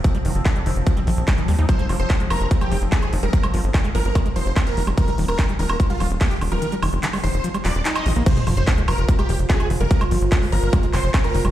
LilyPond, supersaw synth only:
\new Staff \with { instrumentName = "Supersaw synth" } { \time 4/4 \key ees \mixolydian \tempo 4 = 146 r1 | c''8 r16 c''8 r16 bes'8 r16 g'8 r16 aes'8 r16 bes'16~ | bes'16 r4 r16 bes'8 r8 c''8 r16 bes'8 r16 | bes'8 r16 bes'8 r16 bes'8 r16 f'8 r16 g'8 r16 bes'16~ |
bes'16 r4 r16 c''8 r8 d''8 r16 ees''8 r16 | c''8 r16 c''8 r16 bes'8 r16 g'8 r16 aes'8 r16 bes'16~ | bes'16 r4 r16 bes'8 r8 c''8 r16 bes'8 r16 | }